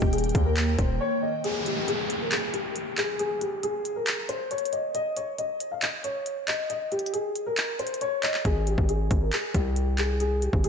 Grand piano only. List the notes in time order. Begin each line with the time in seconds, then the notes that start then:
Already playing: G4
0.13 G#4
0.46 A#4
0.78 C5
1.00 C#5
1.22 D#5
1.44 G#4
1.66 G4
1.88 G#4
2.21 A#4
2.32 G#4
2.54 G4
2.97 G#4
3.19 G#4
3.41 G4
3.63 G#4
3.96 A#4
4.29 C5
4.51 C#5
4.73 D#5
4.95 D#5
5.17 C#5
5.39 D#5
5.72 F5
5.82 D#5
6.04 C#5
6.48 D#5
6.70 D#5
6.92 G4
7.13 G#4
7.46 A#4
7.79 C5
8.01 C#5
8.23 D#5
8.45 G#4
8.67 G4
8.89 G#4
9.22 A#4
9.33 G#4
9.55 G4
9.98 G#4
10.20 G#4
10.43 G4
10.64 G#4